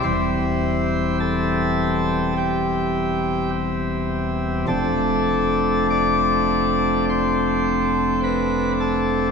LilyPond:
<<
  \new Staff \with { instrumentName = "Pipe organ" } { \time 4/4 \key c \major \tempo 4 = 52 c''4 a'4 g'4 r4 | a'4 d''4 c''4 b'8 a'8 | }
  \new Staff \with { instrumentName = "Pipe organ" } { \clef bass \time 4/4 \key c \major <e,, e, g c' e'>1 | <f,, f, a c' d'>1 | }
>>